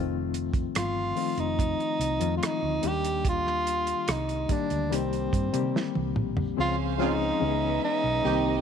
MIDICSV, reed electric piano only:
0, 0, Header, 1, 2, 480
1, 0, Start_track
1, 0, Tempo, 832178
1, 1873, Time_signature, 4, 2, 24, 8
1, 4966, End_track
2, 0, Start_track
2, 0, Title_t, "Reed electric piano"
2, 0, Program_c, 0, 4
2, 0, Note_on_c, 0, 51, 80
2, 0, Note_on_c, 0, 53, 75
2, 0, Note_on_c, 0, 57, 78
2, 0, Note_on_c, 0, 60, 79
2, 0, Note_on_c, 0, 65, 87
2, 73, Control_c, 0, 64, 127
2, 428, Note_off_c, 0, 51, 0
2, 430, Note_off_c, 0, 53, 0
2, 432, Note_off_c, 0, 57, 0
2, 433, Note_off_c, 0, 60, 0
2, 435, Note_off_c, 0, 65, 0
2, 664, Note_on_c, 0, 51, 64
2, 667, Note_on_c, 0, 53, 59
2, 672, Note_on_c, 0, 57, 64
2, 674, Note_on_c, 0, 60, 63
2, 678, Note_on_c, 0, 65, 66
2, 1069, Note_off_c, 0, 51, 0
2, 1071, Note_off_c, 0, 53, 0
2, 1073, Note_off_c, 0, 57, 0
2, 1074, Note_off_c, 0, 60, 0
2, 1076, Note_off_c, 0, 65, 0
2, 1265, Note_on_c, 0, 51, 72
2, 1270, Note_on_c, 0, 53, 63
2, 1274, Note_on_c, 0, 56, 53
2, 1275, Note_on_c, 0, 60, 61
2, 1278, Note_on_c, 0, 65, 70
2, 1310, Note_on_c, 0, 57, 55
2, 1311, Note_off_c, 0, 56, 0
2, 1620, Note_off_c, 0, 51, 0
2, 1626, Note_on_c, 0, 51, 68
2, 1629, Note_on_c, 0, 55, 63
2, 1631, Note_off_c, 0, 53, 0
2, 1631, Note_on_c, 0, 58, 65
2, 1634, Note_off_c, 0, 60, 0
2, 1635, Note_off_c, 0, 65, 0
2, 1636, Note_on_c, 0, 62, 70
2, 1638, Control_c, 0, 64, 0
2, 1639, Note_on_c, 0, 67, 76
2, 1651, Note_off_c, 0, 57, 0
2, 1747, Control_c, 0, 64, 127
2, 2398, Note_off_c, 0, 51, 0
2, 2400, Note_off_c, 0, 55, 0
2, 2401, Note_off_c, 0, 58, 0
2, 2403, Note_off_c, 0, 62, 0
2, 2404, Note_off_c, 0, 67, 0
2, 2587, Note_on_c, 0, 51, 64
2, 2590, Note_on_c, 0, 55, 60
2, 2592, Note_on_c, 0, 58, 59
2, 2596, Note_on_c, 0, 62, 56
2, 2600, Note_on_c, 0, 67, 65
2, 2819, Note_off_c, 0, 51, 0
2, 2824, Note_off_c, 0, 55, 0
2, 2825, Note_off_c, 0, 58, 0
2, 2826, Note_on_c, 0, 51, 74
2, 2831, Note_on_c, 0, 55, 63
2, 2832, Note_on_c, 0, 58, 64
2, 2834, Note_off_c, 0, 67, 0
2, 2835, Note_off_c, 0, 62, 0
2, 2838, Note_on_c, 0, 60, 66
2, 2841, Control_c, 0, 64, 0
2, 2841, Note_on_c, 0, 67, 74
2, 2939, Control_c, 0, 64, 127
2, 3118, Note_off_c, 0, 51, 0
2, 3120, Note_off_c, 0, 55, 0
2, 3121, Note_off_c, 0, 58, 0
2, 3124, Note_off_c, 0, 60, 0
2, 3125, Note_off_c, 0, 67, 0
2, 3184, Note_on_c, 0, 50, 57
2, 3188, Note_on_c, 0, 55, 61
2, 3193, Note_on_c, 0, 58, 56
2, 3196, Note_on_c, 0, 60, 63
2, 3197, Note_on_c, 0, 67, 72
2, 3223, Note_on_c, 0, 51, 58
2, 3226, Note_off_c, 0, 50, 0
2, 3592, Note_off_c, 0, 55, 0
2, 3594, Note_off_c, 0, 58, 0
2, 3596, Note_off_c, 0, 60, 0
2, 3596, Note_off_c, 0, 67, 0
2, 3609, Note_off_c, 0, 51, 0
2, 3788, Note_on_c, 0, 53, 70
2, 3790, Note_on_c, 0, 56, 60
2, 3792, Note_on_c, 0, 60, 67
2, 3796, Note_on_c, 0, 61, 65
2, 3797, Note_on_c, 0, 68, 77
2, 3801, Control_c, 0, 64, 0
2, 3912, Control_c, 0, 64, 127
2, 3951, Note_off_c, 0, 53, 0
2, 3952, Note_off_c, 0, 56, 0
2, 3953, Note_off_c, 0, 60, 0
2, 3955, Note_off_c, 0, 61, 0
2, 3956, Note_off_c, 0, 68, 0
2, 4025, Note_on_c, 0, 53, 73
2, 4028, Note_on_c, 0, 56, 68
2, 4033, Note_on_c, 0, 60, 67
2, 4034, Note_on_c, 0, 61, 69
2, 4040, Note_on_c, 0, 68, 76
2, 4263, Note_off_c, 0, 56, 0
2, 4267, Note_on_c, 0, 52, 71
2, 4269, Note_off_c, 0, 53, 0
2, 4269, Note_off_c, 0, 61, 0
2, 4269, Note_on_c, 0, 56, 65
2, 4273, Note_off_c, 0, 60, 0
2, 4274, Note_on_c, 0, 59, 61
2, 4276, Note_on_c, 0, 61, 61
2, 4277, Note_off_c, 0, 68, 0
2, 4280, Control_c, 0, 64, 0
2, 4281, Note_on_c, 0, 67, 65
2, 4315, Note_off_c, 0, 67, 0
2, 4318, Note_on_c, 0, 68, 78
2, 4382, Control_c, 0, 64, 127
2, 4654, Note_off_c, 0, 52, 0
2, 4655, Note_off_c, 0, 56, 0
2, 4657, Note_off_c, 0, 59, 0
2, 4658, Note_off_c, 0, 61, 0
2, 4680, Note_off_c, 0, 68, 0
2, 4747, Note_on_c, 0, 51, 73
2, 4750, Note_on_c, 0, 55, 72
2, 4752, Note_on_c, 0, 58, 65
2, 4757, Note_on_c, 0, 60, 62
2, 4760, Control_c, 0, 64, 0
2, 4760, Note_on_c, 0, 67, 83
2, 4874, Control_c, 0, 64, 127
2, 4966, Note_off_c, 0, 51, 0
2, 4966, Note_off_c, 0, 55, 0
2, 4966, Note_off_c, 0, 58, 0
2, 4966, Note_off_c, 0, 60, 0
2, 4966, Note_off_c, 0, 67, 0
2, 4966, End_track
0, 0, End_of_file